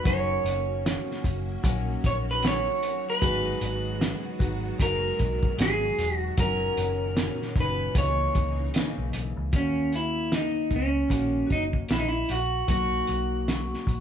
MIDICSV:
0, 0, Header, 1, 6, 480
1, 0, Start_track
1, 0, Tempo, 789474
1, 33, Time_signature, 4, 2, 24, 8
1, 8514, End_track
2, 0, Start_track
2, 0, Title_t, "Clean electric guitar"
2, 0, Program_c, 0, 27
2, 41, Note_on_c, 0, 73, 109
2, 974, Note_off_c, 0, 73, 0
2, 1255, Note_on_c, 0, 73, 98
2, 1291, Note_off_c, 0, 73, 0
2, 1403, Note_on_c, 0, 71, 92
2, 1489, Note_off_c, 0, 71, 0
2, 1504, Note_on_c, 0, 73, 103
2, 1849, Note_off_c, 0, 73, 0
2, 1883, Note_on_c, 0, 71, 102
2, 2903, Note_off_c, 0, 71, 0
2, 2932, Note_on_c, 0, 70, 98
2, 3379, Note_off_c, 0, 70, 0
2, 3416, Note_on_c, 0, 68, 90
2, 3738, Note_off_c, 0, 68, 0
2, 3738, Note_on_c, 0, 66, 90
2, 3861, Note_off_c, 0, 66, 0
2, 3893, Note_on_c, 0, 70, 104
2, 4579, Note_off_c, 0, 70, 0
2, 4623, Note_on_c, 0, 71, 88
2, 4852, Note_off_c, 0, 71, 0
2, 4854, Note_on_c, 0, 73, 90
2, 5540, Note_off_c, 0, 73, 0
2, 5814, Note_on_c, 0, 61, 81
2, 6029, Note_off_c, 0, 61, 0
2, 6053, Note_on_c, 0, 64, 80
2, 6288, Note_on_c, 0, 63, 83
2, 6291, Note_off_c, 0, 64, 0
2, 6529, Note_off_c, 0, 63, 0
2, 6542, Note_on_c, 0, 61, 83
2, 7004, Note_off_c, 0, 61, 0
2, 7006, Note_on_c, 0, 63, 81
2, 7070, Note_off_c, 0, 63, 0
2, 7247, Note_on_c, 0, 64, 93
2, 7287, Note_on_c, 0, 63, 76
2, 7289, Note_off_c, 0, 64, 0
2, 7338, Note_off_c, 0, 63, 0
2, 7348, Note_on_c, 0, 64, 86
2, 7472, Note_off_c, 0, 64, 0
2, 7488, Note_on_c, 0, 66, 88
2, 7712, Note_off_c, 0, 66, 0
2, 7719, Note_on_c, 0, 66, 95
2, 8514, Note_off_c, 0, 66, 0
2, 8514, End_track
3, 0, Start_track
3, 0, Title_t, "Nylon-string guitar"
3, 0, Program_c, 1, 24
3, 19, Note_on_c, 1, 54, 80
3, 33, Note_on_c, 1, 61, 92
3, 45, Note_on_c, 1, 63, 88
3, 51, Note_on_c, 1, 70, 93
3, 989, Note_off_c, 1, 54, 0
3, 991, Note_on_c, 1, 54, 65
3, 994, Note_off_c, 1, 61, 0
3, 1002, Note_on_c, 1, 61, 71
3, 1003, Note_off_c, 1, 70, 0
3, 1006, Note_off_c, 1, 63, 0
3, 1009, Note_on_c, 1, 63, 74
3, 1020, Note_on_c, 1, 70, 81
3, 1469, Note_off_c, 1, 54, 0
3, 1472, Note_off_c, 1, 61, 0
3, 1472, Note_on_c, 1, 54, 60
3, 1480, Note_on_c, 1, 61, 63
3, 1485, Note_off_c, 1, 63, 0
3, 1487, Note_off_c, 1, 70, 0
3, 1488, Note_on_c, 1, 63, 67
3, 1493, Note_on_c, 1, 70, 67
3, 1947, Note_off_c, 1, 54, 0
3, 1950, Note_on_c, 1, 56, 90
3, 1952, Note_off_c, 1, 61, 0
3, 1954, Note_off_c, 1, 63, 0
3, 1954, Note_on_c, 1, 63, 85
3, 1959, Note_on_c, 1, 66, 91
3, 1963, Note_off_c, 1, 70, 0
3, 1965, Note_on_c, 1, 71, 97
3, 2662, Note_off_c, 1, 71, 0
3, 2670, Note_on_c, 1, 71, 58
3, 2672, Note_off_c, 1, 56, 0
3, 2678, Note_off_c, 1, 66, 0
3, 2680, Note_on_c, 1, 66, 53
3, 2687, Note_off_c, 1, 63, 0
3, 2690, Note_on_c, 1, 63, 50
3, 2907, Note_on_c, 1, 56, 64
3, 2911, Note_off_c, 1, 63, 0
3, 2912, Note_off_c, 1, 71, 0
3, 2917, Note_off_c, 1, 66, 0
3, 2918, Note_on_c, 1, 63, 63
3, 2925, Note_on_c, 1, 66, 65
3, 3380, Note_off_c, 1, 56, 0
3, 3387, Note_on_c, 1, 56, 60
3, 3390, Note_off_c, 1, 63, 0
3, 3392, Note_on_c, 1, 63, 64
3, 3399, Note_off_c, 1, 66, 0
3, 3402, Note_on_c, 1, 66, 63
3, 3411, Note_on_c, 1, 71, 64
3, 3871, Note_off_c, 1, 56, 0
3, 3875, Note_off_c, 1, 63, 0
3, 3875, Note_on_c, 1, 54, 92
3, 3877, Note_on_c, 1, 61, 79
3, 3878, Note_off_c, 1, 66, 0
3, 3883, Note_off_c, 1, 71, 0
3, 3885, Note_on_c, 1, 63, 88
3, 3886, Note_on_c, 1, 70, 95
3, 4595, Note_off_c, 1, 54, 0
3, 4601, Note_off_c, 1, 63, 0
3, 4604, Note_on_c, 1, 63, 48
3, 4614, Note_off_c, 1, 61, 0
3, 4617, Note_on_c, 1, 61, 46
3, 4829, Note_on_c, 1, 49, 62
3, 4837, Note_off_c, 1, 61, 0
3, 4839, Note_off_c, 1, 63, 0
3, 4839, Note_on_c, 1, 52, 60
3, 4848, Note_on_c, 1, 58, 70
3, 4849, Note_off_c, 1, 70, 0
3, 4851, Note_on_c, 1, 63, 71
3, 5308, Note_off_c, 1, 49, 0
3, 5316, Note_on_c, 1, 49, 64
3, 5317, Note_off_c, 1, 52, 0
3, 5324, Note_on_c, 1, 52, 64
3, 5329, Note_off_c, 1, 58, 0
3, 5331, Note_on_c, 1, 58, 66
3, 5334, Note_off_c, 1, 63, 0
3, 5340, Note_on_c, 1, 63, 71
3, 5794, Note_off_c, 1, 52, 0
3, 5796, Note_off_c, 1, 49, 0
3, 5796, Note_off_c, 1, 58, 0
3, 5796, Note_on_c, 1, 58, 75
3, 5802, Note_on_c, 1, 61, 75
3, 5815, Note_off_c, 1, 63, 0
3, 5818, Note_on_c, 1, 66, 78
3, 6737, Note_on_c, 1, 51, 61
3, 6749, Note_off_c, 1, 58, 0
3, 6749, Note_off_c, 1, 61, 0
3, 6752, Note_on_c, 1, 58, 59
3, 6756, Note_on_c, 1, 61, 63
3, 6762, Note_off_c, 1, 66, 0
3, 6764, Note_on_c, 1, 66, 67
3, 6963, Note_off_c, 1, 66, 0
3, 6970, Note_on_c, 1, 66, 52
3, 6982, Note_off_c, 1, 61, 0
3, 6987, Note_off_c, 1, 51, 0
3, 6987, Note_off_c, 1, 58, 0
3, 6989, Note_on_c, 1, 61, 47
3, 6994, Note_on_c, 1, 58, 40
3, 7706, Note_on_c, 1, 54, 71
3, 7709, Note_off_c, 1, 58, 0
3, 7712, Note_on_c, 1, 58, 80
3, 7713, Note_off_c, 1, 61, 0
3, 7722, Note_on_c, 1, 63, 77
3, 7730, Note_off_c, 1, 66, 0
3, 7732, Note_on_c, 1, 66, 85
3, 8514, Note_off_c, 1, 54, 0
3, 8514, Note_off_c, 1, 58, 0
3, 8514, Note_off_c, 1, 63, 0
3, 8514, Note_off_c, 1, 66, 0
3, 8514, End_track
4, 0, Start_track
4, 0, Title_t, "String machine"
4, 0, Program_c, 2, 50
4, 0, Note_on_c, 2, 51, 89
4, 26, Note_on_c, 2, 61, 75
4, 28, Note_on_c, 2, 58, 86
4, 28, Note_on_c, 2, 66, 92
4, 29, Note_on_c, 2, 54, 85
4, 1931, Note_off_c, 2, 61, 0
4, 1933, Note_off_c, 2, 58, 0
4, 1963, Note_on_c, 2, 59, 76
4, 1968, Note_on_c, 2, 56, 84
4, 3850, Note_off_c, 2, 51, 0
4, 3860, Note_off_c, 2, 59, 0
4, 3863, Note_off_c, 2, 56, 0
4, 3874, Note_on_c, 2, 46, 81
4, 3874, Note_on_c, 2, 61, 78
4, 3875, Note_on_c, 2, 51, 83
4, 4808, Note_off_c, 2, 66, 0
4, 4809, Note_off_c, 2, 54, 0
4, 4825, Note_off_c, 2, 51, 0
4, 4825, Note_off_c, 2, 61, 0
4, 4846, Note_on_c, 2, 52, 77
4, 4847, Note_on_c, 2, 63, 86
4, 4852, Note_on_c, 2, 49, 80
4, 4852, Note_on_c, 2, 56, 77
4, 5776, Note_off_c, 2, 46, 0
4, 5791, Note_off_c, 2, 52, 0
4, 5792, Note_off_c, 2, 63, 0
4, 5794, Note_off_c, 2, 49, 0
4, 5794, Note_off_c, 2, 56, 0
4, 8514, End_track
5, 0, Start_track
5, 0, Title_t, "Picked electric bass"
5, 0, Program_c, 3, 34
5, 33, Note_on_c, 3, 30, 114
5, 225, Note_off_c, 3, 30, 0
5, 270, Note_on_c, 3, 30, 97
5, 579, Note_off_c, 3, 30, 0
5, 757, Note_on_c, 3, 30, 108
5, 948, Note_off_c, 3, 30, 0
5, 994, Note_on_c, 3, 34, 98
5, 1186, Note_off_c, 3, 34, 0
5, 1242, Note_on_c, 3, 34, 85
5, 1623, Note_off_c, 3, 34, 0
5, 1959, Note_on_c, 3, 32, 117
5, 2149, Note_off_c, 3, 32, 0
5, 2198, Note_on_c, 3, 32, 94
5, 2504, Note_off_c, 3, 32, 0
5, 2676, Note_on_c, 3, 32, 103
5, 2867, Note_off_c, 3, 32, 0
5, 2915, Note_on_c, 3, 30, 102
5, 3107, Note_off_c, 3, 30, 0
5, 3162, Note_on_c, 3, 35, 96
5, 3351, Note_off_c, 3, 35, 0
5, 3394, Note_on_c, 3, 32, 93
5, 3586, Note_off_c, 3, 32, 0
5, 3641, Note_on_c, 3, 28, 96
5, 3831, Note_off_c, 3, 28, 0
5, 3876, Note_on_c, 3, 30, 95
5, 4068, Note_off_c, 3, 30, 0
5, 4121, Note_on_c, 3, 30, 96
5, 4426, Note_off_c, 3, 30, 0
5, 4595, Note_on_c, 3, 30, 109
5, 4787, Note_off_c, 3, 30, 0
5, 4834, Note_on_c, 3, 37, 105
5, 5026, Note_off_c, 3, 37, 0
5, 5080, Note_on_c, 3, 37, 93
5, 5270, Note_off_c, 3, 37, 0
5, 5460, Note_on_c, 3, 35, 87
5, 5537, Note_off_c, 3, 35, 0
5, 5553, Note_on_c, 3, 35, 96
5, 5669, Note_off_c, 3, 35, 0
5, 5695, Note_on_c, 3, 37, 103
5, 5774, Note_off_c, 3, 37, 0
5, 5794, Note_on_c, 3, 39, 95
5, 6491, Note_off_c, 3, 39, 0
5, 6507, Note_on_c, 3, 37, 87
5, 6703, Note_off_c, 3, 37, 0
5, 6751, Note_on_c, 3, 34, 95
5, 6945, Note_off_c, 3, 34, 0
5, 6994, Note_on_c, 3, 30, 82
5, 7187, Note_off_c, 3, 30, 0
5, 7238, Note_on_c, 3, 34, 89
5, 7429, Note_off_c, 3, 34, 0
5, 7476, Note_on_c, 3, 34, 78
5, 7669, Note_off_c, 3, 34, 0
5, 7708, Note_on_c, 3, 35, 94
5, 7904, Note_off_c, 3, 35, 0
5, 7959, Note_on_c, 3, 35, 89
5, 8343, Note_off_c, 3, 35, 0
5, 8433, Note_on_c, 3, 34, 80
5, 8514, Note_off_c, 3, 34, 0
5, 8514, End_track
6, 0, Start_track
6, 0, Title_t, "Drums"
6, 33, Note_on_c, 9, 36, 117
6, 33, Note_on_c, 9, 42, 85
6, 94, Note_off_c, 9, 36, 0
6, 94, Note_off_c, 9, 42, 0
6, 278, Note_on_c, 9, 42, 71
6, 339, Note_off_c, 9, 42, 0
6, 524, Note_on_c, 9, 38, 100
6, 525, Note_on_c, 9, 42, 86
6, 584, Note_off_c, 9, 38, 0
6, 586, Note_off_c, 9, 42, 0
6, 677, Note_on_c, 9, 38, 40
6, 738, Note_off_c, 9, 38, 0
6, 755, Note_on_c, 9, 36, 84
6, 760, Note_on_c, 9, 42, 63
6, 816, Note_off_c, 9, 36, 0
6, 821, Note_off_c, 9, 42, 0
6, 996, Note_on_c, 9, 36, 102
6, 1001, Note_on_c, 9, 42, 94
6, 1057, Note_off_c, 9, 36, 0
6, 1061, Note_off_c, 9, 42, 0
6, 1241, Note_on_c, 9, 36, 91
6, 1241, Note_on_c, 9, 42, 65
6, 1302, Note_off_c, 9, 36, 0
6, 1302, Note_off_c, 9, 42, 0
6, 1475, Note_on_c, 9, 42, 94
6, 1488, Note_on_c, 9, 38, 124
6, 1536, Note_off_c, 9, 42, 0
6, 1549, Note_off_c, 9, 38, 0
6, 1719, Note_on_c, 9, 42, 82
6, 1780, Note_off_c, 9, 42, 0
6, 1958, Note_on_c, 9, 36, 116
6, 1959, Note_on_c, 9, 42, 84
6, 2019, Note_off_c, 9, 36, 0
6, 2020, Note_off_c, 9, 42, 0
6, 2197, Note_on_c, 9, 42, 74
6, 2257, Note_off_c, 9, 42, 0
6, 2440, Note_on_c, 9, 38, 102
6, 2441, Note_on_c, 9, 42, 88
6, 2501, Note_off_c, 9, 38, 0
6, 2502, Note_off_c, 9, 42, 0
6, 2676, Note_on_c, 9, 36, 92
6, 2682, Note_on_c, 9, 42, 68
6, 2737, Note_off_c, 9, 36, 0
6, 2743, Note_off_c, 9, 42, 0
6, 2916, Note_on_c, 9, 36, 101
6, 2920, Note_on_c, 9, 42, 99
6, 2977, Note_off_c, 9, 36, 0
6, 2981, Note_off_c, 9, 42, 0
6, 3157, Note_on_c, 9, 42, 70
6, 3161, Note_on_c, 9, 36, 97
6, 3218, Note_off_c, 9, 42, 0
6, 3221, Note_off_c, 9, 36, 0
6, 3300, Note_on_c, 9, 36, 88
6, 3361, Note_off_c, 9, 36, 0
6, 3396, Note_on_c, 9, 42, 98
6, 3409, Note_on_c, 9, 38, 127
6, 3457, Note_off_c, 9, 42, 0
6, 3469, Note_off_c, 9, 38, 0
6, 3639, Note_on_c, 9, 42, 85
6, 3700, Note_off_c, 9, 42, 0
6, 3876, Note_on_c, 9, 42, 91
6, 3877, Note_on_c, 9, 36, 116
6, 3937, Note_off_c, 9, 42, 0
6, 3938, Note_off_c, 9, 36, 0
6, 4118, Note_on_c, 9, 42, 73
6, 4179, Note_off_c, 9, 42, 0
6, 4357, Note_on_c, 9, 38, 100
6, 4359, Note_on_c, 9, 42, 88
6, 4418, Note_off_c, 9, 38, 0
6, 4419, Note_off_c, 9, 42, 0
6, 4513, Note_on_c, 9, 38, 41
6, 4574, Note_off_c, 9, 38, 0
6, 4594, Note_on_c, 9, 36, 92
6, 4599, Note_on_c, 9, 42, 65
6, 4655, Note_off_c, 9, 36, 0
6, 4659, Note_off_c, 9, 42, 0
6, 4834, Note_on_c, 9, 36, 99
6, 4835, Note_on_c, 9, 42, 101
6, 4895, Note_off_c, 9, 36, 0
6, 4896, Note_off_c, 9, 42, 0
6, 5076, Note_on_c, 9, 42, 65
6, 5078, Note_on_c, 9, 36, 97
6, 5137, Note_off_c, 9, 42, 0
6, 5139, Note_off_c, 9, 36, 0
6, 5314, Note_on_c, 9, 42, 94
6, 5326, Note_on_c, 9, 38, 122
6, 5375, Note_off_c, 9, 42, 0
6, 5387, Note_off_c, 9, 38, 0
6, 5552, Note_on_c, 9, 42, 85
6, 5613, Note_off_c, 9, 42, 0
6, 5793, Note_on_c, 9, 42, 81
6, 5794, Note_on_c, 9, 36, 105
6, 5854, Note_off_c, 9, 42, 0
6, 5855, Note_off_c, 9, 36, 0
6, 6033, Note_on_c, 9, 42, 62
6, 6094, Note_off_c, 9, 42, 0
6, 6274, Note_on_c, 9, 38, 101
6, 6276, Note_on_c, 9, 42, 76
6, 6335, Note_off_c, 9, 38, 0
6, 6336, Note_off_c, 9, 42, 0
6, 6510, Note_on_c, 9, 36, 80
6, 6514, Note_on_c, 9, 42, 60
6, 6571, Note_off_c, 9, 36, 0
6, 6575, Note_off_c, 9, 42, 0
6, 6750, Note_on_c, 9, 36, 86
6, 6755, Note_on_c, 9, 42, 91
6, 6810, Note_off_c, 9, 36, 0
6, 6816, Note_off_c, 9, 42, 0
6, 6993, Note_on_c, 9, 42, 59
6, 6995, Note_on_c, 9, 36, 83
6, 7054, Note_off_c, 9, 42, 0
6, 7056, Note_off_c, 9, 36, 0
6, 7134, Note_on_c, 9, 36, 82
6, 7195, Note_off_c, 9, 36, 0
6, 7227, Note_on_c, 9, 42, 85
6, 7239, Note_on_c, 9, 38, 111
6, 7287, Note_off_c, 9, 42, 0
6, 7300, Note_off_c, 9, 38, 0
6, 7472, Note_on_c, 9, 42, 77
6, 7532, Note_off_c, 9, 42, 0
6, 7711, Note_on_c, 9, 36, 110
6, 7712, Note_on_c, 9, 42, 79
6, 7772, Note_off_c, 9, 36, 0
6, 7772, Note_off_c, 9, 42, 0
6, 7949, Note_on_c, 9, 42, 64
6, 8009, Note_off_c, 9, 42, 0
6, 8197, Note_on_c, 9, 38, 90
6, 8198, Note_on_c, 9, 42, 77
6, 8257, Note_off_c, 9, 38, 0
6, 8259, Note_off_c, 9, 42, 0
6, 8354, Note_on_c, 9, 38, 38
6, 8415, Note_off_c, 9, 38, 0
6, 8433, Note_on_c, 9, 36, 80
6, 8441, Note_on_c, 9, 42, 59
6, 8493, Note_off_c, 9, 36, 0
6, 8502, Note_off_c, 9, 42, 0
6, 8514, End_track
0, 0, End_of_file